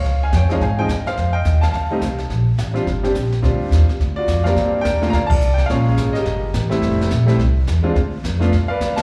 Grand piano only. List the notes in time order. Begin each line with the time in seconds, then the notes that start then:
Already playing: C#5 F5
0.23 F5 G#5
0.35 C#5 G5
0.49 F3 G#3 C4 D#4 F5
0.53 C#5
0.62 F5 G#5
0.79 F3 G#3 C4 D#4 D#5 G5
1.07 C5 F5
1.33 D#5 G5
1.61 F5 A5
1.72 F5 A5
1.91 G3 A3 C4 D#4
2.74 G3 C4 D4 F4
3.03 G3 C4 D4 G4
3.42 G3 C4 D4 F4
4.16 F4 F#4 D5
4.44 G2 A#3 C4 D4 G4 A#4 D5 F5
4.81 A#4 D5 G5
5.02 A3 A#3 D4 F4
5.10 A#5
5.15 D5 F5
5.26 D5 F5 A5
5.54 G5
5.66 G#3 A#3 F5
5.70 C#4 F4 G#4 C#5
6.13 G4 A#4 D#5
6.69 G3 A3 C4 E4
7.26 G3 A3 C4 E4
7.83 G#3 C4 D4 F4
8.40 A3 B3 D4 F4
8.68 B4 D5 F5
8.96 D5 D#5 A5